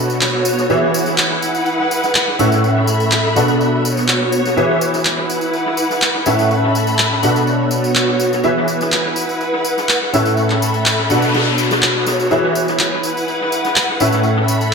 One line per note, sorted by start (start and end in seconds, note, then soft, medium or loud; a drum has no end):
0.00 0.67 B2 medium
0.00 1.38 B3 medium
0.00 0.67 D4 medium
0.00 0.67 F#4 medium
0.00 1.38 F#4 medium
0.00 0.67 A4 medium
0.00 0.67 B4 medium
0.00 1.38 C#5 medium
0.00 0.67 F#5 medium
0.00 downlifter medium
0.10 tambourine medium
0.21 clap loud
0.21 closed hi-hat medium
0.21 tambourine soft
0.34 snare soft
0.45 closed hi-hat medium
0.45 tambourine loud
0.58 snare soft
0.58 tambourine medium
0.70 2.36 E3 medium
0.70 2.78 E4 medium
0.70 2.36 G#4 medium
0.70 2.36 B4 medium
0.70 2.36 E5 medium
0.70 closed hi-hat medium
0.70 tambourine soft
0.83 snare medium
0.91 2.78 F#5 medium
0.91 closed hi-hat medium
0.91 tambourine loud
1.06 snare soft
1.06 tambourine medium
1.18 2.78 B4 medium
1.18 clap loud
1.18 tambourine soft
1.30 snare soft
1.42 closed hi-hat medium
1.42 tambourine medium
1.55 tambourine soft
1.66 closed hi-hat medium
1.66 tambourine soft
1.80 snare soft
1.91 closed hi-hat medium
1.91 tambourine loud
2.03 snare soft
2.03 tambourine medium
2.14 clap loud
2.14 closed hi-hat medium
2.14 tambourine soft
2.27 snare soft
2.39 3.33 A2 medium
2.39 3.33 C#4 medium
2.39 3.33 E4 medium
2.39 3.33 A4 medium
2.39 3.84 A4 medium
2.39 3.33 B4 medium
2.39 3.33 E5 medium
2.39 tambourine medium
2.52 snare soft
2.52 tambourine soft
2.63 closed hi-hat medium
2.63 tambourine soft
2.70 3.84 E5 medium
2.76 snare medium
2.83 3.84 B5 medium
2.87 closed hi-hat medium
2.87 tambourine medium
3.00 tambourine soft
3.11 clap loud
3.11 closed hi-hat medium
3.11 tambourine soft
3.24 snare soft
3.35 4.54 B2 medium
3.35 5.25 B3 medium
3.35 4.54 D4 medium
3.35 4.54 F#4 medium
3.35 4.54 A4 medium
3.35 4.54 B4 medium
3.35 4.54 F#5 medium
3.35 snare medium
3.35 closed hi-hat medium
3.35 tambourine medium
3.48 snare soft
3.48 tambourine soft
3.60 closed hi-hat medium
3.60 tambourine soft
3.84 5.25 F#4 medium
3.84 closed hi-hat medium
3.84 tambourine medium
3.90 5.25 C#5 medium
3.97 snare soft
3.97 tambourine soft
4.08 clap loud
4.08 closed hi-hat medium
4.08 tambourine soft
4.21 snare soft
4.32 closed hi-hat medium
4.32 tambourine medium
4.46 snare soft
4.46 tambourine soft
4.56 6.23 E3 medium
4.56 6.65 E4 medium
4.56 6.23 G#4 medium
4.56 6.23 B4 medium
4.56 6.23 E5 medium
4.56 closed hi-hat medium
4.56 tambourine soft
4.69 snare soft
4.81 closed hi-hat medium
4.81 tambourine medium
4.93 6.65 B4 medium
4.93 snare soft
4.93 tambourine soft
5.05 clap loud
5.05 tambourine soft
5.16 6.65 F#5 medium
5.16 snare soft
5.30 closed hi-hat medium
5.30 tambourine medium
5.41 tambourine soft
5.53 closed hi-hat medium
5.53 tambourine soft
5.66 snare soft
5.77 closed hi-hat medium
5.77 tambourine medium
5.90 snare soft
5.90 tambourine medium
6.02 clap loud
6.02 closed hi-hat medium
6.02 tambourine soft
6.14 snare soft
6.26 7.20 A2 medium
6.26 7.20 C#4 medium
6.26 7.20 E4 medium
6.26 7.20 A4 medium
6.26 7.71 A4 medium
6.26 7.20 B4 medium
6.26 7.20 E5 medium
6.26 closed hi-hat medium
6.26 tambourine medium
6.39 snare soft
6.39 tambourine soft
6.50 closed hi-hat medium
6.50 tambourine soft
6.61 7.71 B5 medium
6.61 snare medium
6.70 7.71 E5 medium
6.74 closed hi-hat medium
6.74 tambourine medium
6.87 closed hi-hat soft
6.87 tambourine soft
6.99 clap loud
6.99 tambourine soft
7.11 snare soft
7.23 8.41 B2 medium
7.23 9.12 B3 medium
7.23 8.41 D4 medium
7.23 8.41 F#4 medium
7.23 8.41 A4 medium
7.23 8.41 B4 medium
7.23 8.41 F#5 medium
7.23 closed hi-hat medium
7.23 tambourine medium
7.35 9.12 C#5 medium
7.35 snare soft
7.35 tambourine soft
7.47 9.12 F#4 medium
7.47 closed hi-hat medium
7.47 tambourine soft
7.60 closed hi-hat soft
7.71 closed hi-hat medium
7.71 tambourine medium
7.84 tambourine soft
7.95 clap loud
7.95 closed hi-hat medium
7.95 tambourine soft
8.07 snare soft
8.20 closed hi-hat medium
8.20 tambourine medium
8.33 snare soft
8.33 tambourine soft
8.44 10.10 E3 medium
8.44 10.52 E4 medium
8.44 10.10 G#4 medium
8.44 10.10 B4 medium
8.44 10.10 E5 medium
8.44 closed hi-hat medium
8.44 tambourine soft
8.57 snare medium
8.62 10.52 B4 medium
8.68 closed hi-hat medium
8.68 tambourine medium
8.81 snare soft
8.81 tambourine soft
8.92 clap loud
8.92 closed hi-hat medium
8.92 tambourine soft
9.00 10.52 F#5 medium
9.05 snare soft
9.16 closed hi-hat medium
9.16 tambourine medium
9.29 tambourine soft
9.41 closed hi-hat medium
9.41 tambourine soft
9.52 snare soft
9.65 closed hi-hat medium
9.65 tambourine medium
9.77 snare soft
9.77 tambourine medium
9.89 clap loud
9.89 tambourine soft
10.02 snare soft
10.13 11.07 A2 medium
10.13 11.07 C#4 medium
10.13 11.07 E4 medium
10.13 11.58 A4 medium
10.13 11.07 A4 medium
10.13 11.07 B4 medium
10.13 11.07 E5 medium
10.13 closed hi-hat medium
10.13 tambourine medium
10.25 snare soft
10.25 tambourine soft
10.37 11.58 E5 medium
10.37 closed hi-hat medium
10.37 tambourine soft
10.37 noise sweep medium
10.50 snare soft
10.50 clap soft
10.57 11.58 B5 medium
10.61 closed hi-hat medium
10.61 tambourine loud
10.74 closed hi-hat soft
10.74 tambourine soft
10.86 clap loud
10.86 closed hi-hat medium
10.86 tambourine soft
10.99 snare soft
11.10 12.28 B2 medium
11.10 12.99 B3 medium
11.10 12.28 D4 medium
11.10 12.28 F#4 medium
11.10 12.28 A4 medium
11.10 12.28 B4 medium
11.10 12.28 F#5 medium
11.10 tambourine medium
11.21 12.99 F#4 medium
11.21 snare soft
11.21 tambourine soft
11.34 snare medium
11.34 closed hi-hat medium
11.34 tambourine soft
11.46 snare soft
11.51 12.99 C#5 medium
11.58 closed hi-hat medium
11.58 tambourine medium
11.71 snare loud
11.71 closed hi-hat medium
11.71 tambourine soft
11.82 clap loud
11.82 tambourine soft
12.06 snare medium
12.06 closed hi-hat medium
12.06 tambourine medium
12.19 snare soft
12.19 tambourine soft
12.31 13.98 E3 medium
12.31 14.40 E4 medium
12.31 13.98 G#4 medium
12.31 13.98 B4 medium
12.31 13.98 E5 medium
12.31 closed hi-hat medium
12.31 tambourine soft
12.43 snare medium
12.55 closed hi-hat medium
12.55 tambourine medium
12.59 14.40 B4 medium
12.68 snare soft
12.68 tambourine soft
12.79 clap loud
12.79 tambourine soft
12.93 snare soft
13.03 14.39 F#5 medium
13.03 closed hi-hat medium
13.03 tambourine medium
13.17 tambourine soft
13.28 closed hi-hat medium
13.28 tambourine soft
13.41 snare soft
13.52 closed hi-hat medium
13.52 tambourine medium
13.65 snare soft
13.65 tambourine medium
13.76 clap loud
13.76 tambourine soft
13.89 snare soft
14.00 14.74 A2 medium
14.00 14.74 C#4 medium
14.00 14.74 E4 medium
14.00 14.74 A4 medium
14.00 14.74 B4 medium
14.00 14.74 E5 medium
14.00 closed hi-hat medium
14.00 tambourine medium
14.12 snare soft
14.12 tambourine medium
14.23 closed hi-hat medium
14.23 tambourine soft
14.36 snare soft
14.44 14.74 E5 medium
14.44 14.74 B5 medium
14.48 closed hi-hat medium
14.48 tambourine loud
14.61 closed hi-hat soft
14.61 tambourine soft